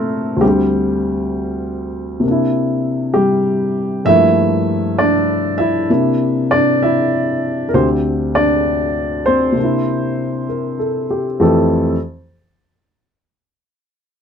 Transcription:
Already playing: A#2 C3 A3 A#3 C4 D4 E4 A4 A#4 C5
0.36 D2
0.40 D3 G3 C4 G4
0.48 G4
2.20 C3 A#3
2.27 D4 E4
3.14 G3 G4
4.05 G2 F3 A3 E4 E5
4.10 A#3
4.99 D4 D5
5.58 E4 E5
5.90 C3 A#3 D4 E4
6.51 D4 D5
6.83 E4 E5
7.69 A#4
7.74 D2 D3 C4 G4 C5
8.35 D4 D5
9.26 C4 C5
9.52 C3
9.57 A#3 D4
9.64 E4
10.49 A#4
10.79 A4
11.10 G4
11.40 F2 E3 A3 G4 A4

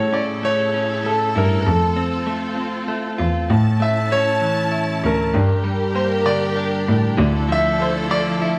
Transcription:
Already playing: A2 C#3 E4 A4 C#5
0.13 C#4 D5
0.43 A3 C#5
0.74 C#4
1.04 A3 A4
1.35 G2 E4 A#4
1.61 A#4
1.66 F2 C4 F4 A4
1.96 C4
2.27 A3
2.57 C4
2.88 A3
3.18 E2 F4
3.50 A2 C#4 E4 A5
3.80 A3 E5
4.11 C#4 C#5
4.41 E3
4.72 E4
5.03 D2 C#4 A#4
5.34 G2 D4 G4 A#4
5.64 G3
5.94 A#3 C5
6.26 D3 D5
6.56 D4
6.88 A2
7.17 D2 D3 F3 A3 E4 A4
7.49 F3 E5
7.80 A3 C5
8.10 F3 D5
8.42 E4

